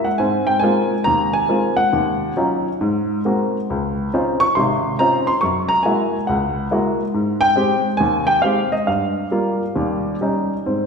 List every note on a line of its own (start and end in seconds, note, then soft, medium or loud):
0.05 0.20 F#5 medium
0.18 0.57 G#2 medium
0.18 0.57 C4 medium
0.18 0.46 G#5 medium
0.47 0.62 G5 medium
0.59 0.93 G#3 medium
0.59 0.93 A#3 medium
0.59 0.93 C4 medium
0.59 1.01 G#5 medium
0.64 0.93 F4 medium
1.04 1.44 D#2 medium
1.04 1.32 A#5 medium
1.33 1.79 G#5 medium
1.49 1.79 G#3 medium
1.49 1.80 A#3 soft
1.49 1.80 C4 soft
1.49 1.80 F4 medium
1.77 2.31 F#5 medium
1.93 2.31 D#2 medium
2.37 2.67 F#3 medium
2.37 2.67 C#4 medium
2.37 2.68 D#4 medium
2.37 2.67 F4 medium
2.81 3.19 G#2 medium
3.25 3.56 G#3 medium
3.25 3.56 A#3 soft
3.25 3.56 C4 soft
3.25 3.57 F#4 medium
3.70 4.08 C#2 medium
4.14 4.44 C4 medium
4.14 4.44 C#4 medium
4.14 4.44 D#4 medium
4.14 4.44 F4 medium
4.40 4.56 C#6 loud
4.55 4.94 G#1 medium
4.55 4.94 C3 medium
4.55 4.96 C6 medium
4.99 5.30 C4 medium
4.99 5.30 C#4 soft
4.99 5.30 D#4 medium
4.99 5.30 F4 medium
4.99 5.29 A#5 medium
5.27 5.41 C6 medium
5.41 5.80 F#2 medium
5.41 5.71 C#6 medium
5.69 5.83 A#5 medium
5.83 6.15 G#3 medium
5.83 6.15 A#3 medium
5.83 6.16 E4 medium
5.83 6.16 F#4 medium
5.83 6.24 G#5 medium
6.27 6.66 C#2 medium
6.27 6.95 F#5 medium
6.71 7.01 G#3 medium
6.71 7.01 A#3 medium
6.71 7.01 E4 medium
6.71 7.02 F#4 medium
7.14 7.51 G#2 medium
7.41 7.81 G5 loud
7.56 7.86 G#3 medium
7.56 7.86 C4 medium
7.56 7.87 G4 medium
7.97 8.37 D#2 medium
7.97 8.25 G#5 medium
8.27 8.42 G5 medium
8.42 8.74 G#3 medium
8.42 8.74 C4 soft
8.42 8.74 G4 medium
8.42 8.72 F5 medium
8.72 8.87 D#5 medium
8.87 9.25 G2 medium
8.87 10.16 F5 medium
9.31 9.62 G3 medium
9.31 9.62 A#3 medium
9.31 9.62 F4 medium
9.76 10.14 D#2 medium
9.76 10.14 G3 medium
10.21 10.52 G3 medium
10.21 10.53 C#4 soft
10.21 10.53 D#4 medium
10.66 10.86 G#2 soft
10.66 10.86 C4 medium